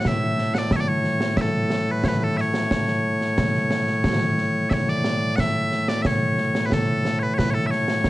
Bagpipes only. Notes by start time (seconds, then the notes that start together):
Already playing: A2 A3
0.07 E5
0.54 F#5
0.58 D5
0.72 C#5 E5
0.80 D5
0.88 C#5
1.37 E5
1.41 A4
1.91 B4
2.05 B4 C#5
2.18 B4
2.23 A4
2.37 C#5 E5
4.70 C#5 E5
4.89 D5
5.36 F#5
5.40 E5
5.89 D5
6.02 E5
6.06 C#5
6.66 B4
6.73 A4
7.19 B4 C#5
7.34 C#5
7.38 B4
7.51 A4 C#5
7.66 E5
7.71 C#5